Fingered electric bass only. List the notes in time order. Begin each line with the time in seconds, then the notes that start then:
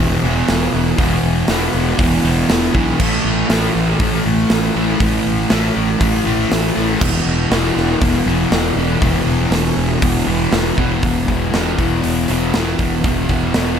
Already playing: E1
0.23 E1
0.49 E1
0.74 E1
0.98 E1
1.23 E1
1.49 E1
1.74 E1
1.99 E1
2.25 E1
2.50 E1
2.75 B1
3.00 A1
3.25 A1
3.50 A1
3.75 A1
4.00 A1
4.26 A1
4.51 A1
4.76 A1
5.00 A1
5.27 A1
5.52 A1
5.76 A1
6.01 A1
6.27 A1
6.52 A1
6.77 A1
7.01 E1
7.26 E1
7.51 E1
7.76 E1
8.02 E1
8.26 E1
8.52 E1
8.76 E1
9.02 E1
9.27 E1
9.51 E1
9.77 E1
10.03 E1
10.27 E1
10.52 E1
10.78 E1
11.03 E1
11.28 E1
11.53 E1
11.78 E1
12.04 E1
12.30 E1
12.55 E1
12.79 E1
13.04 E1
13.29 E1
13.56 E1